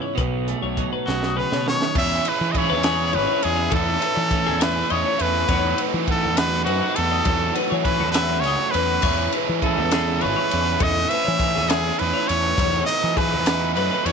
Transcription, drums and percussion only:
0.18 kick loud
0.18 closed hi-hat medium
0.48 closed hi-hat medium
0.77 kick medium
0.77 closed hi-hat medium
1.08 snare medium
1.23 snare medium
1.52 snare medium
1.68 snare medium
1.82 snare medium
1.95 kick loud
1.95 crash loud
2.25 ride medium
2.55 kick medium
2.55 ride medium
2.83 snare loud
2.83 ride loud
3.13 ride medium
3.43 ride medium
3.71 kick loud
3.71 ride loud
4.02 ride medium
4.31 kick medium
4.31 ride medium
4.61 snare loud
4.61 ride loud
4.90 ride medium
5.19 ride medium
5.49 kick loud
5.49 ride loud
5.78 ride medium
6.08 kick medium
6.08 ride medium
6.37 snare loud
6.37 ride loud
6.67 ride medium
6.96 ride medium
7.25 kick loud
7.25 ride loud
7.55 ride medium
7.85 kick medium
7.85 ride medium
8.14 snare loud
8.14 ride loud
8.44 ride medium
8.74 ride medium
9.02 kick loud
9.02 crash loud
9.32 ride medium
9.62 kick medium
9.62 ride medium
9.91 snare loud
9.91 ride loud
10.21 ride medium
10.51 ride medium
10.80 kick loud
10.80 ride loud
11.10 ride medium
11.39 kick medium
11.39 ride medium
11.70 snare loud
11.70 ride loud
11.99 ride medium
12.29 ride medium
12.58 kick loud
12.58 ride loud
12.88 ride medium
13.17 kick medium
13.17 ride medium
13.46 snare loud
13.46 ride loud
13.76 ride medium
14.06 ride medium

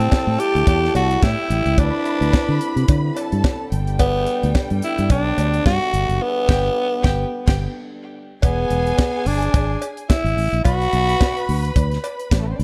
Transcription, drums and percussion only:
0.00 closed hi-hat soft
0.11 kick loud
0.11 snare loud
0.11 cowbell medium
0.40 closed hi-hat medium
0.56 closed hi-hat soft
0.67 kick loud
0.67 closed hi-hat medium
0.67 cowbell medium
0.85 snare soft
0.95 closed hi-hat medium
0.95 cowbell medium
1.11 closed hi-hat soft
1.23 kick loud
1.23 snare loud
1.23 cowbell medium
1.50 closed hi-hat medium
1.66 closed hi-hat soft
1.78 kick loud
1.78 closed hi-hat medium
1.78 cowbell medium
2.05 closed hi-hat medium
2.22 closed hi-hat soft
2.33 kick loud
2.33 snare loud
2.33 cowbell medium
2.61 closed hi-hat medium
2.77 closed hi-hat soft
2.88 kick loud
2.88 closed hi-hat medium
2.88 cowbell medium
3.17 closed hi-hat medium
3.17 cowbell medium
3.32 closed hi-hat soft
3.44 kick loud
3.44 snare loud
3.44 cowbell medium
3.72 closed hi-hat medium
3.87 closed hi-hat soft
3.99 kick medium
3.99 closed hi-hat medium
3.99 cowbell medium
4.26 closed hi-hat medium
4.43 closed hi-hat soft
4.55 kick loud
4.55 snare loud
4.55 cowbell medium
4.70 closed hi-hat soft
4.82 closed hi-hat medium
4.98 closed hi-hat soft
5.10 kick loud
5.10 closed hi-hat medium
5.10 cowbell medium
5.38 closed hi-hat medium
5.38 cowbell medium
5.54 closed hi-hat soft
5.66 kick loud
5.66 snare loud
5.66 cowbell medium
5.94 closed hi-hat medium
6.10 closed hi-hat soft
6.49 kick loud
6.49 snare medium
6.49 crash medium
7.04 kick loud
7.04 snare loud
7.48 kick loud
7.48 snare loud
7.48 crash medium
8.42 kick medium
8.42 closed hi-hat medium
8.42 cowbell medium
8.70 closed hi-hat medium
8.87 closed hi-hat soft
8.98 kick loud
8.98 snare loud
8.98 closed hi-hat medium
8.98 cowbell medium
9.26 open hi-hat medium
9.42 closed hi-hat soft
9.54 kick loud
9.54 closed hi-hat medium
9.54 cowbell medium
9.82 closed hi-hat medium
9.82 cowbell medium
9.97 closed hi-hat soft
10.10 kick loud
10.10 snare loud
10.10 closed hi-hat medium
10.10 cowbell medium
10.26 closed hi-hat soft
10.38 open hi-hat medium
10.54 closed hi-hat soft
10.65 kick medium
10.65 closed hi-hat medium
10.65 cowbell medium
10.82 closed hi-hat soft
10.93 closed hi-hat medium
11.09 closed hi-hat soft
11.20 kick loud
11.20 snare loud
11.20 closed hi-hat medium
11.20 cowbell medium
11.37 closed hi-hat soft
11.49 open hi-hat medium
11.65 closed hi-hat soft
11.76 kick loud
11.76 closed hi-hat medium
11.76 cowbell medium
11.91 snare soft
11.91 closed hi-hat soft
12.04 closed hi-hat medium
12.04 cowbell medium
12.20 closed hi-hat soft
12.31 kick loud
12.31 snare loud
12.31 closed hi-hat medium
12.31 cowbell medium
12.60 open hi-hat medium

